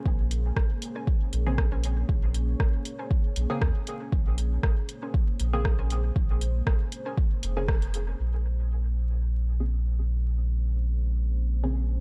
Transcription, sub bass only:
0.06 A#1
0.56 G#1
1.33 A#1
2.09 A#1
2.60 G#1
3.36 A#1
3.62 D#2
4.12 A#1
4.63 G#1
5.40 A#1
6.16 A#1
6.67 G#1
7.43 F1
8.19 A#1

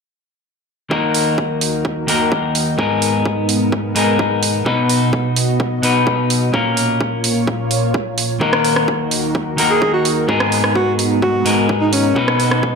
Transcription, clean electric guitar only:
0.90 D#3 A#3 D#4 F#4 A#4
2.07 D#3 A#3 D#4 F#4 A#4
2.77 G#2 B3 D#4 G#4 A#4
3.95 G#2 B3 D#4 G#4 A#4
4.65 B2 B3 D#4 F#4 B4
5.82 B2 B3 D#4 F#4 B4
6.53 A#2 A#3 C#4 F4 A#4
8.40 D#3 A#3 D#4 F#4 A#4
9.57 D#3 A#3 D#4 F#4 A#4
10.27 G#2 B3 D#4 G#4 A#4
11.45 G#2 B3 D#4 G#4 A#4
12.15 B2 B3 D#4 F#4 B4

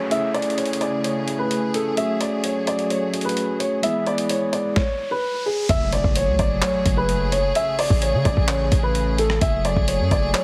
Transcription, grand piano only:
0.11 E5
0.34 D5
0.58 C#5
0.81 D5
1.04 C#5
1.39 B4
1.75 A4
1.97 E5
2.21 D5
2.44 C#5
2.67 D5
2.90 C#5
3.25 B4
3.59 C#5
3.83 E5
4.07 D5
4.30 C#5
4.53 D5
4.76 C#5
5.11 B4
5.46 G#4
5.70 E5
5.93 D5
6.16 C#5
6.39 D5
6.63 C#5
6.97 B4
7.32 C#5
7.56 E5
7.79 D5
8.02 C#5
8.25 D5
8.49 C#5
8.83 B4
9.19 A4
9.42 E5
9.65 D5
9.88 C#5
10.11 D5
10.34 C#5

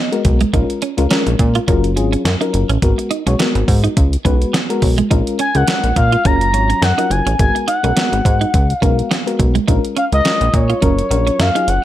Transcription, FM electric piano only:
0.12 G#3 B3 F#4 A#4
0.53 G#3 C#4 F4 A#4
0.97 G#3 C#4 F4 A#4
1.10 G#3 C#4 F4 A#4
1.67 F#3 C#4 F4 A#4
1.96 F#3 C#4 F4 G#4
2.40 F#3 C#4 F4 A#4
2.82 G#3 B3 F#4 A#4
3.27 G#3 B3 F#4 C#5
3.39 G#3 B3 F#4 A#4
4.25 G#3 B3 F#4 B4
4.69 G#3 B3 F#4 A#4
5.11 G#3 C#4 F4 A#4
5.55 G#3 C#4 F4 A#4
5.67 G#3 C#4 F4 A#4
6.24 F#3 C#4 F4 A#4
6.53 F#3 C#4 F4 C#5
6.98 F#3 C#4 F4 A#4
7.39 G#3 B3 F#4 A#4
7.83 G#3 B3 F#4 A#4
7.96 G#3 B3 F#4 A#4
8.81 G#3 B3 F#4 A#4
9.26 G#3 B3 F#4 A#4
9.68 G#3 C#4 F4 A#4
10.12 G#3 C#4 F4 A#4
10.25 G#3 C#4 F4 A#4
10.81 F#3 C#4 F4 A#4
11.10 F#3 C#4 F4 A#4
11.55 F#3 C#4 F4 G#4

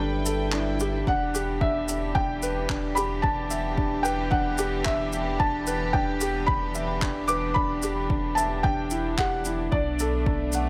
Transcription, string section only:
Already playing: G3 A4 B4 G5
1.07 E3 B3 D4 G4
9.73 A3 B3

